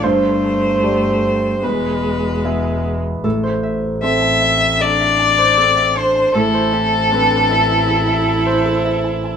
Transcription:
<<
  \new Staff \with { instrumentName = "Harp" } { \time 4/4 \key a \minor \tempo 4 = 77 r1 | a'16 c''16 e''8 a'16 a''16 e''16 e''16 a'16 e''16 a''16 c''16 a'16 e''16 a''16 a''16 | a'16 c''16 e''8 a'16 a''16 e''16 e''16 a'16 e''16 a''16 c''16 a'16 e''16 a''16 a''16 | }
  \new Staff \with { instrumentName = "Violin" } { \time 4/4 \key a \minor c''2 b'4. r8 | r4 e''4 d''4. c''8 | a'2.~ a'8 r8 | }
  \new Staff \with { instrumentName = "Grand piano" } { \time 4/4 \key a \minor << { c''2 b'4. r8 | r1 | r1 | } \\ { g,4 <a g' d''>4 e,4 <b gis' e''>4 | a,4 <c' a' c''>2. | a,4 <c' a' b'>2. | } >> }
  \new Staff \with { instrumentName = "Viola" } { \time 4/4 \key a \minor a2 gis4.~ gis16 r16 | r2 d'4 c'8 d'8 | e'8 c'8 d'8 e'2~ e'8 | }
  \new Staff \with { instrumentName = "Double bass" } { \clef bass \time 4/4 \key a \minor g,,2 e,,2 | a,,1 | a,,1 | }
>>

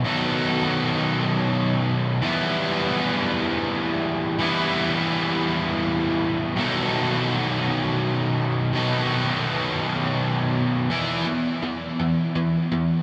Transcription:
\new Staff \with { instrumentName = "Overdriven electric guitar" } { \time 6/8 \key e \minor \tempo 4. = 55 <b, dis fis b dis' a'>2. | <e g b e'>2. | <e g b e'>2. | <b, dis fis b dis' a'>2. |
<b, dis fis b dis' a'>2. | <e b e'>8 <e b>8 <e b>8 <e b>8 <e b>8 <e b>8 | }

